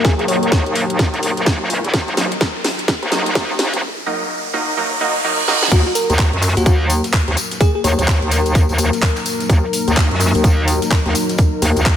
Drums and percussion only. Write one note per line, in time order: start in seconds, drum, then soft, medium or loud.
0.05 kick loud
0.05 snare medium
0.05 closed hi-hat medium
0.19 closed hi-hat soft
0.28 closed hi-hat medium
0.28 open hi-hat loud
0.43 closed hi-hat medium
0.52 kick loud
0.52 snare medium
0.52 snare loud
0.52 closed hi-hat medium
0.66 closed hi-hat soft
0.75 snare soft
0.75 closed hi-hat medium
0.75 open hi-hat medium
0.90 closed hi-hat medium
0.99 kick loud
0.99 snare medium
0.99 closed hi-hat medium
1.14 closed hi-hat soft
1.23 closed hi-hat medium
1.23 open hi-hat loud
1.37 snare soft
1.37 closed hi-hat soft
1.46 kick loud
1.46 snare loud
1.46 snare medium
1.46 closed hi-hat medium
1.70 closed hi-hat medium
1.70 open hi-hat medium
1.84 snare soft
1.84 closed hi-hat medium
1.94 kick loud
1.94 snare medium
1.94 closed hi-hat medium
2.08 closed hi-hat soft
2.17 snare medium
2.17 closed hi-hat medium
2.17 open hi-hat loud
2.32 closed hi-hat medium
2.41 kick loud
2.41 snare loud
2.41 snare medium
2.41 closed hi-hat medium
2.64 snare medium
2.64 open hi-hat loud
2.64 open hi-hat medium
2.79 closed hi-hat medium
2.88 kick loud
2.88 snare medium
2.88 closed hi-hat medium
3.03 closed hi-hat soft
3.12 snare medium
3.12 closed hi-hat medium
3.12 open hi-hat loud
3.26 snare soft
3.26 closed hi-hat soft
3.35 kick loud
3.35 snare medium
3.35 snare loud
3.35 closed hi-hat medium
3.50 snare soft
3.59 snare medium
3.59 closed hi-hat medium
3.59 open hi-hat medium
3.73 snare soft
3.73 closed hi-hat medium
5.48 snare medium
5.62 snare medium
5.72 kick loud
5.72 closed hi-hat medium
5.72 tambourine medium
5.72 crash loud
5.95 closed hi-hat medium
5.95 open hi-hat loud
5.95 tambourine loud
6.10 closed hi-hat medium
6.10 tambourine soft
6.19 kick loud
6.19 snare loud
6.19 clap loud
6.19 closed hi-hat medium
6.19 tambourine medium
6.33 closed hi-hat soft
6.42 clap soft
6.42 open hi-hat medium
6.42 tambourine medium
6.57 closed hi-hat medium
6.57 tambourine soft
6.66 kick loud
6.66 closed hi-hat medium
6.66 tambourine medium
6.90 closed hi-hat medium
6.90 open hi-hat loud
6.90 tambourine medium
7.04 snare soft
7.04 closed hi-hat medium
7.04 tambourine soft
7.13 kick loud
7.13 snare loud
7.13 clap loud
7.13 closed hi-hat medium
7.13 tambourine medium
7.28 snare soft
7.28 closed hi-hat soft
7.37 closed hi-hat medium
7.37 open hi-hat medium
7.37 tambourine medium
7.51 snare soft
7.51 closed hi-hat medium
7.51 tambourine soft
7.61 kick loud
7.61 closed hi-hat medium
7.61 tambourine medium
7.84 closed hi-hat medium
7.84 open hi-hat loud
7.84 tambourine medium
7.99 closed hi-hat medium
7.99 tambourine soft
8.08 kick loud
8.08 snare loud
8.08 clap loud
8.08 closed hi-hat medium
8.08 tambourine medium
8.22 closed hi-hat soft
8.31 closed hi-hat medium
8.31 open hi-hat medium
8.31 tambourine loud
8.46 closed hi-hat medium
8.46 tambourine soft
8.55 kick loud
8.55 closed hi-hat medium
8.55 tambourine medium
8.69 closed hi-hat soft
8.69 tambourine soft
8.78 closed hi-hat medium
8.78 open hi-hat loud
8.78 tambourine loud
8.93 snare soft
8.93 closed hi-hat medium
8.93 tambourine soft
9.02 kick loud
9.02 snare loud
9.02 clap loud
9.02 closed hi-hat medium
9.02 tambourine medium
9.17 clap soft
9.17 closed hi-hat soft
9.17 tambourine soft
9.26 closed hi-hat medium
9.26 open hi-hat loud
9.26 tambourine loud
9.40 snare soft
9.40 closed hi-hat medium
9.40 tambourine soft
9.50 kick loud
9.50 closed hi-hat medium
9.50 tambourine medium
9.73 closed hi-hat medium
9.73 open hi-hat loud
9.73 tambourine medium
9.88 closed hi-hat medium
9.88 tambourine soft
9.97 kick loud
9.97 snare loud
9.97 clap loud
9.97 closed hi-hat medium
9.97 tambourine medium
10.11 closed hi-hat soft
10.20 clap soft
10.20 open hi-hat loud
10.20 open hi-hat medium
10.20 tambourine loud
10.34 closed hi-hat medium
10.34 tambourine soft
10.44 kick loud
10.44 closed hi-hat medium
10.44 tambourine medium
10.68 closed hi-hat medium
10.68 open hi-hat loud
10.68 tambourine loud
10.82 snare soft
10.82 closed hi-hat medium
10.82 tambourine soft
10.91 kick loud
10.91 snare loud
10.91 clap loud
10.91 closed hi-hat medium
10.91 tambourine medium
11.06 snare soft
11.06 closed hi-hat soft
11.15 closed hi-hat medium
11.15 open hi-hat loud
11.15 tambourine loud
11.29 snare soft
11.29 closed hi-hat medium
11.29 tambourine soft
11.38 kick loud
11.38 closed hi-hat medium
11.38 tambourine soft
11.62 closed hi-hat medium
11.62 open hi-hat loud
11.62 tambourine medium
11.76 closed hi-hat medium
11.76 tambourine soft
11.86 kick loud
11.86 snare loud
11.86 clap loud
11.86 closed hi-hat medium
11.86 tambourine medium